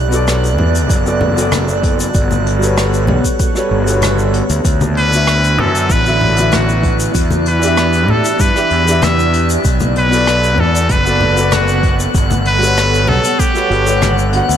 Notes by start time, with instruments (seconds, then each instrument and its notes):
Already playing: fingered electric bass B1, ambient pad B3 F#4 A4 D5, synth texture F#6
0.08 grand piano B3 F#4
0.12 grand piano A4 D5, closed hi-hat, shaker
0.28 cross-stick, shaker
0.43 closed hi-hat, shaker
0.58 fingered electric bass E2, low conga
0.75 closed hi-hat, shaker
0.90 fingered electric bass F#1, kick, closed hi-hat, shaker
1.04 grand piano B3 F#4 A4 D5, shaker
1.21 low conga
1.34 grand piano B3 F#4, closed hi-hat, shaker
1.39 grand piano A4 D5
1.52 cross-stick, closed hi-hat, high conga, shaker
1.68 shaker
1.83 kick, closed hi-hat
2.00 closed hi-hat, shaker
2.14 fingered electric bass G1, ambient pad C#5, kick, closed hi-hat, shaker
2.31 high conga, shaker
2.47 closed hi-hat
2.59 grand piano G3 F#4 A4, shaker
2.63 grand piano B4 C#5, closed hi-hat
2.78 cross-stick, shaker
2.93 closed hi-hat, shaker
3.07 fingered electric bass B1, high conga, low conga
3.24 kick, closed hi-hat, shaker
3.39 kick, closed hi-hat, shaker
3.54 grand piano G3 F#4 A4 B4 C#5, cross-stick, shaker
3.71 fingered electric bass G1
3.84 grand piano G3 F#4 A4, closed hi-hat, shaker
3.90 grand piano B4 C#5
4.02 cross-stick, closed hi-hat, high conga, shaker
4.19 shaker
4.34 closed hi-hat
4.50 fingered electric bass D2, closed hi-hat, shaker
4.64 fingered electric bass D2, ambient pad B3 E4 F#4 D5, synth texture F#6, kick, closed hi-hat, shaker
4.81 high conga, shaker
4.97 muted trumpet B4, closed hi-hat
5.08 grand piano D3 B3
5.13 grand piano F#4 E5, closed hi-hat, shaker
5.27 cross-stick, shaker
5.44 closed hi-hat, shaker
5.58 fingered electric bass F#2, muted trumpet A4, high conga, low conga
5.75 closed hi-hat, shaker
5.89 fingered electric bass A1, muted trumpet B4, kick, closed hi-hat, shaker
6.04 grand piano D3 B3 F#4 E5, shaker
6.21 low conga
6.33 grand piano D3 B3, closed hi-hat
6.38 grand piano F#4 E5, shaker
6.52 muted trumpet F#4, cross-stick, closed hi-hat, high conga, shaker
6.69 shaker
6.83 kick, closed hi-hat
6.99 closed hi-hat, shaker
7.14 fingered electric bass E2, ambient pad G4, kick, closed hi-hat, shaker
7.31 high conga, shaker
7.46 muted trumpet B4, closed hi-hat
7.59 grand piano E3 D4, closed hi-hat, shaker
7.64 grand piano G4 E5
7.77 cross-stick, shaker
7.93 closed hi-hat, shaker
8.08 fingered electric bass A2, muted trumpet A4, low conga
8.25 closed hi-hat, shaker
8.40 fingered electric bass G2, muted trumpet B4, kick, closed hi-hat, shaker
8.54 grand piano E3 D4 G4 E5, cross-stick, shaker
8.70 fingered electric bass E2, closed hi-hat
8.83 grand piano E3 D4, closed hi-hat
8.88 grand piano G4 E5, shaker
9.02 muted trumpet E5, cross-stick, closed hi-hat, high conga, shaker
9.19 shaker
9.34 closed hi-hat
9.50 closed hi-hat, shaker
9.64 fingered electric bass B1, ambient pad A4 F#5, kick, closed hi-hat, shaker
9.80 high conga, shaker
9.96 muted trumpet B4, closed hi-hat
10.09 grand piano B3 F#4
10.13 grand piano A4 D5, closed hi-hat, shaker
10.27 cross-stick, shaker
10.44 closed hi-hat, shaker
10.58 fingered electric bass E2, muted trumpet A4, low conga
10.75 closed hi-hat, shaker
10.89 fingered electric bass F#1, muted trumpet B4, kick, closed hi-hat, shaker
11.04 grand piano B3 F#4 A4 D5, shaker
11.21 low conga
11.34 grand piano B3 F#4, closed hi-hat, shaker
11.39 grand piano A4 D5
11.52 muted trumpet F#4, cross-stick, closed hi-hat, high conga, shaker
11.68 shaker
11.83 kick, closed hi-hat
12.00 closed hi-hat, shaker
12.15 fingered electric bass G1, ambient pad C#5, kick, closed hi-hat, shaker
12.30 high conga, shaker
12.45 muted trumpet B4, closed hi-hat
12.58 grand piano G3 F#4 A4, closed hi-hat
12.63 grand piano B4 C#5, shaker
12.77 cross-stick, shaker
12.94 closed hi-hat, shaker
13.07 fingered electric bass B1, muted trumpet A4, high conga, low conga
13.24 closed hi-hat, shaker
13.39 muted trumpet G4, kick, closed hi-hat, shaker
13.54 grand piano G3 F#4 A4 B4 C#5, cross-stick, shaker
13.69 fingered electric bass G1, grand piano G3 F#4 A4 B4 C#5, closed hi-hat
13.85 grand piano G3 F#4 A4 B4 C#5, closed hi-hat, shaker
14.02 cross-stick, closed hi-hat, high conga, shaker
14.18 shaker
14.30 grand piano D3 B3, closed hi-hat
14.35 grand piano F#4 F#5
14.49 fingered electric bass D2, closed hi-hat, shaker